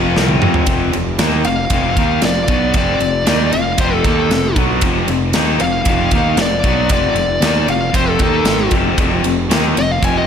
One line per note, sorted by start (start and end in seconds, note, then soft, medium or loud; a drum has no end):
0.00 0.13 F1 loud
0.00 0.39 F2 medium
0.00 0.40 C3 loud
0.00 0.40 F3 medium
0.16 0.39 C2 medium
0.16 snare medium
0.29 high tom medium
0.41 0.65 F2 medium
0.41 0.67 C3 medium
0.41 0.65 F3 medium
0.41 mid tom medium
0.45 0.66 F2 medium
0.54 floor tom loud
0.66 0.91 F1 medium
0.66 0.92 F2 medium
0.66 0.92 C3 loud
0.66 0.93 F3 loud
0.66 kick loud
0.66 ride medium
0.93 1.18 F1 medium
0.93 1.14 F2 medium
0.93 1.14 C3 medium
0.93 ride medium
1.19 1.43 D#2 medium
1.19 1.44 D#3 medium
1.19 1.44 A#3 medium
1.19 1.45 D#4 medium
1.19 snare loud
1.19 ride loud
1.44 1.69 F1 medium
1.44 1.66 F2 medium
1.44 1.66 C3 medium
1.44 2.21 F5 medium
1.44 ride medium
1.70 1.95 F1 medium
1.70 1.96 F2 medium
1.70 1.96 C3 medium
1.70 1.97 F3 medium
1.70 kick loud
1.70 ride medium
1.97 2.21 D#2 loud
1.97 2.22 D#3 medium
1.97 2.22 A#3 medium
1.97 2.23 D#4 loud
1.97 kick loud
1.97 ride medium
2.22 2.47 F1 medium
2.22 2.44 F2 medium
2.22 2.45 C3 medium
2.22 2.74 D5 medium
2.22 snare loud
2.22 ride medium
2.47 2.73 B1 loud
2.47 2.73 B2 medium
2.47 2.74 F#3 medium
2.47 2.74 B3 medium
2.47 kick loud
2.47 ride medium
2.74 2.99 F1 medium
2.74 2.99 F2 medium
2.74 2.99 C3 loud
2.74 3.00 F3 loud
2.74 3.52 D5 medium
2.74 kick loud
2.74 ride medium
3.00 3.24 F1 medium
3.00 3.21 F2 medium
3.00 3.22 C3 medium
3.00 ride medium
3.26 3.51 D#2 medium
3.26 3.52 D#3 medium
3.26 3.52 A#3 medium
3.26 3.53 D#4 medium
3.26 snare loud
3.26 ride medium
3.52 3.77 F1 medium
3.52 3.73 F2 medium
3.52 3.73 C3 medium
3.52 3.78 F5 loud
3.52 ride medium
3.77 4.03 F1 medium
3.77 4.03 F2 medium
3.77 4.04 C3 medium
3.77 4.04 F3 medium
3.77 3.94 C5 medium
3.77 kick loud
3.77 ride medium
3.94 4.05 A4 medium
4.04 4.29 D#2 medium
4.04 4.30 D#3 medium
4.04 4.30 A#3 medium
4.04 4.30 D#4 loud
4.04 4.56 A4 medium
4.04 kick loud
4.04 ride medium
4.30 4.54 F1 medium
4.30 4.51 F2 medium
4.30 4.52 C3 medium
4.30 snare loud
4.30 ride medium
4.56 4.81 B1 medium
4.56 4.82 B2 medium
4.56 4.82 F#3 medium
4.56 4.83 B3 loud
4.56 kick loud
4.56 ride medium
4.81 5.06 F1 medium
4.81 5.07 F2 loud
4.81 5.07 C3 medium
4.81 5.08 F3 loud
4.81 kick loud
4.81 ride loud
5.07 5.32 F1 medium
5.07 5.29 F2 medium
5.07 5.29 C3 medium
5.07 ride medium
5.33 5.58 D#2 medium
5.33 5.60 D#3 medium
5.33 5.60 A#3 medium
5.33 5.60 D#4 loud
5.33 snare loud
5.33 ride medium
5.59 5.84 F1 medium
5.59 5.81 F2 medium
5.59 5.81 C3 medium
5.59 6.36 F5 medium
5.59 ride medium
5.85 6.10 F1 medium
5.85 6.11 F2 medium
5.85 6.12 C3 medium
5.85 6.12 F3 loud
5.85 kick loud
5.85 ride medium
6.11 6.36 D#2 medium
6.11 6.37 D#3 medium
6.11 6.38 A#3 loud
6.11 6.38 D#4 loud
6.11 kick medium
6.11 ride medium
6.36 6.61 F1 medium
6.36 6.59 F2 medium
6.36 6.59 C3 medium
6.36 snare loud
6.36 ride medium
6.41 6.90 D5 medium
6.64 6.88 B1 loud
6.64 6.89 B2 medium
6.64 6.90 F#3 loud
6.64 6.90 B3 loud
6.64 kick loud
6.64 ride medium
6.89 7.13 F1 medium
6.89 7.14 F2 medium
6.89 7.15 C3 loud
6.89 7.15 F3 medium
6.89 7.67 D5 medium
6.89 kick loud
6.89 ride loud
7.13 7.39 F1 medium
7.13 7.37 F2 medium
7.13 7.37 C3 medium
7.13 ride medium
7.40 7.65 D#2 medium
7.40 7.66 D#3 medium
7.40 7.67 A#3 medium
7.40 7.67 D#4 medium
7.40 snare loud
7.40 ride loud
7.67 7.92 F1 medium
7.67 7.88 F2 medium
7.67 7.88 C3 medium
7.67 7.94 F5 medium
7.67 ride medium
7.93 8.18 F1 medium
7.93 8.19 F2 medium
7.93 8.18 C3 medium
7.93 8.19 F3 loud
7.93 8.09 C5 medium
7.93 kick loud
7.93 ride medium
8.10 8.21 A4 medium
8.18 8.44 D#2 medium
8.18 8.44 D#3 medium
8.18 8.45 A#3 medium
8.18 8.45 D#4 loud
8.18 kick medium
8.18 ride medium
8.23 8.72 A4 medium
8.45 8.70 G#1 medium
8.45 8.70 G#2 medium
8.45 8.71 D#3 medium
8.45 8.71 G#3 loud
8.45 snare loud
8.45 ride medium
8.71 8.96 F1 medium
8.71 8.96 F2 loud
8.71 8.96 C3 loud
8.71 8.97 F3 medium
8.71 kick loud
8.71 ride medium
8.97 9.22 F1 medium
8.97 9.23 F2 medium
8.97 9.23 C3 medium
8.97 9.23 F3 medium
8.97 kick loud
8.97 ride medium
9.24 9.48 F1 medium
9.24 9.45 F2 medium
9.24 9.45 C3 medium
9.24 ride medium
9.49 9.74 D#2 loud
9.49 9.74 D#3 medium
9.49 9.75 A#3 medium
9.49 9.75 D#4 medium
9.49 snare loud
9.49 ride loud
9.74 10.00 F1 medium
9.74 9.96 F2 medium
9.74 9.96 C3 medium
9.74 ride medium
9.79 9.90 D#5 loud
9.92 10.04 F5 medium
10.00 10.26 F1 medium
10.00 10.26 F2 medium
10.00 10.26 C3 medium
10.00 10.27 F3 medium
10.00 10.16 G#5 medium
10.00 kick loud
10.00 ride loud
10.18 10.27 D#5 medium